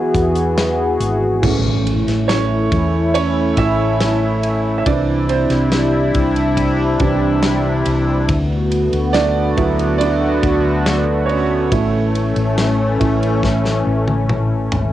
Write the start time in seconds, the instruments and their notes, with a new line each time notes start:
Already playing: analog synth pad E3 B3 F#4 G#4, grand piano F#3 G#3 E4 E5
0.14 fingered electric bass E2, kick, closed hi-hat
0.35 closed hi-hat
0.58 snare, closed hi-hat
1.00 fingered electric bass G#1, closed hi-hat
1.42 fingered electric bass A1, grand piano E3 A3 C#4, analog synth pad A3 C#4 E4, kick, crash, impact
1.87 ride
2.07 fingered electric bass A1, snare, ride
2.28 grand piano C#4 C#5, snare, ride
2.72 fingered electric bass E2, kick, ride
3.14 grand piano C#4 C#5, ride
3.57 fingered electric bass A1, grand piano E4 E5, kick, ride
4.00 snare, ride
4.43 ride
4.78 grand piano E5
4.86 fingered electric bass C2, analog synth pad C3 G3 D4 E4, grand piano E3 C4 D4 D5, kick, ride
5.29 grand piano C4 C5, ride
5.50 fingered electric bass C2, snare, ride
5.72 snare, ride
6.14 fingered electric bass C2, kick, ride
6.36 ride
6.57 kick, ride
7.00 fingered electric bass C2, grand piano E3 C4 D4, kick, ride
7.43 snare, ride
7.86 fingered electric bass C2, ride
8.29 fingered electric bass D2, analog synth pad D3 A3 B3 F#4, kick, ride
8.72 ride
8.93 fingered electric bass D2, ride
9.13 grand piano D4 D5, snare, ride
9.57 fingered electric bass D2, grand piano F#3 B3 E4, kick, ride
9.79 ride
9.98 grand piano D4 D5, ride
10.43 fingered electric bass D2, kick, ride
10.86 snare, ride
11.26 grand piano C#4 C#5, ride
11.71 fingered electric bass A1, analog synth pad E3 A3 C#4, grand piano A3 C#4 E4, kick, ride
12.15 ride
12.36 fingered electric bass A1, ride
12.58 snare, ride
13.00 fingered electric bass A1, grand piano A3 C#4 E4, kick, ride
13.23 ride
13.43 kick, snare
13.65 snare
13.87 fingered electric bass A1
14.08 high tom
14.29 mid tom
14.72 fingered electric bass G#1, floor tom